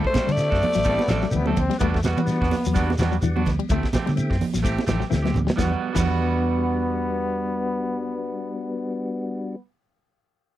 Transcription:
Already playing: C4 E4 G4
0.04 A3 C5, kick
0.13 G3 C4 D4 A4, muted fingered electric bass stroke, kick, snare, ride bell, high conga, shekere
0.27 D3 G3 A3, snare, ride bell, shekere
0.32 D5
0.36 A3 C4 E4 G4, shekere
0.40 snare, ride bell
0.50 F#2 C4 D4 A4, kick, snare
0.61 open hi-hat, high conga, low conga, shekere
0.73 A1 F#3, snare, ride bell, shekere
0.83 G3 A3 C4 D4 E4 G4 A4, kick, ride bell, shekere
0.88 A3
0.99 B3, snare, high conga
1.08 A1 E3 G3 A3 C4 D4 A4, snare, ride bell, low conga, shekere
1.22 F#3, snare, shekere
1.31 D2 E3 A3 B3 C4 E4 G4, ride bell, shekere
1.46 F#3 A3 C4 D4 A4, high conga
1.57 D2 C4, kick, ride bell, high conga, low conga, shekere
1.70 G3, snare, ride bell
1.78 E2 G3 A3 B3 D4 F#4, kick, ride bell, shekere
1.94 A3, kick, snare
2.03 G3 B3 F#4, muted clean electric guitar stroke, snare, ride bell, high conga, shekere
2.17 E3 G3, ride bell, high conga, shekere
2.25 G3 B3 D4 F#4, shekere
2.29 snare, ride bell
2.41 E2 B3 D4 F#4, kick, snare
2.51 snare, open hi-hat, high conga, low conga, shekere
2.65 E2 F#3, shekere
2.73 G3 B3 D4 F#4, kick, ride bell, shekere
2.90 snare, high conga
2.98 E2 E3 G3 B3 D4 F#4, snare, ride bell, shekere
3.12 F#3, shekere
3.21 E2 E3 G3 B3 D4 F#4, ride bell, shekere
3.36 F#3 B3 D4 F#4, high conga
3.46 D2, kick, snare, ride bell, low conga, shekere
3.59 G3, ride bell
3.69 D2 A3 C4 E4 G4, muted clean electric guitar stroke, kick, ride bell, shekere
3.83 kick, snare
3.93 A3 C4 G4, muted fingered electric bass stroke, kick, snare, ride bell, high conga, low conga, shekere
4.06 D3 G3, snare, ride bell, high conga, shekere
4.15 A3 C4 E4 G4, ride bell, shekere
4.30 F#2 C4, muted clean electric guitar stroke, kick, snare
4.41 open hi-hat, high conga, low conga, shekere
4.54 A1 F#3, snare, ride bell, shekere
4.63 A3 C4 E4 G4, kick, ride bell, shekere
4.79 snare, high conga
4.87 A1 E3 A3 C4 G4, snare, ride bell, low conga, shekere
5.00 F#3, muted fingered electric bass stroke, snare, shekere
5.09 D2 E3 A3 C4 E4 G4, snare, shekere
5.22 F#3 C4 G4, snare, high conga
5.34 D2, mid tom, high conga, low conga, shekere
5.47 G3, snare
5.56 E2 E3 G3 B3 D4 F#4, muted clean electric guitar stroke, kick, snare, shekere
5.61 F#4, low conga
5.93 E2 E3 G3 B3 D4 F#4, muted clean electric guitar stroke, kick, crash, low conga, shekere
5.98 F#4

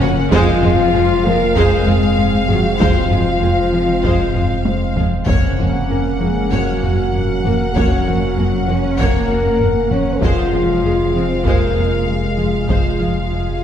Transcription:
Already playing: F1 C#3 A#3 C#4 A#4 F#5
0.01 F2 F3 A#3 F#4, taiko low-mid
0.31 F1 F2 F3 G#3 C4 F4 C5 F5, taiko
0.63 F2 F3 G#3 F4, taiko low-mid
0.94 F2 G#3 G#4
1.25 F2 F3 G#3 A#3 F4 A#4
1.55 F2 G#3 G#4 C5, taiko
1.86 F2 G#3 F4, taiko low-mid
2.18 F2, taiko low-mid
2.48 F2 F3 F#3 G#3 F4 F#4, taiko low-mid
2.79 F2 F3 G#3 F4 C5, taiko
3.10 F2 F3 G#3 F4, taiko low-mid
3.41 F2 G#3 G#4
3.73 F2 F3 G#3 F4
4.03 F2 G#3 C5, taiko
4.35 F2 G#3 F4, taiko low-mid
4.65 F2, taiko high
4.96 F2 F3 G#3 F4, taiko low
5.27 F1 F2 C#3 A#3 C#4 A#4 C#5 F#5, taiko
5.58 F2 F3 A#3 F#4, taiko low-mid
5.90 F2 A#3 A#4
6.19 F2 F3 G#3 A#3 F#4 G#4
6.50 F2 F#3 A#3 F#4 C#5, taiko
6.82 F2 A#3 F#4, taiko low-mid
7.13 F2, taiko low-mid
7.44 F2 F3 A#3 F#4 A#4, taiko low-mid
7.74 F2 F#3 A#3 F#4 C#5, taiko
8.06 F2 F3 A#3 F#4, taiko low-mid
8.37 F2 A#3 A#4
8.67 F2 F3 A#3 C#4 F#4 C#5
8.98 F2 A#3 A#4 C#5, taiko
9.29 F2 A#3 F#4, taiko low-mid
9.60 F2, taiko low-mid
9.91 F2 F3 A#3 C#4 F#4 C#5, taiko low-mid
10.22 F1 F2 C3 F3 G#3 F4 G#4 C5 F5, taiko
10.53 F2 F3 G#3 F4
10.84 F2 G#3 G#4
11.15 F2 F3 G#3 C4 F4 C5
11.45 F2 G#3 A#3 A#4 C5, taiko
11.77 F2 G#3 F4
12.08 F2 G#3 G#4
12.38 F2 F3 G#3 F4
12.69 F2 F3 G#3 F4 C5, taiko
13.00 F2 F3 G#3 F4
13.32 F2 G#3 G#4

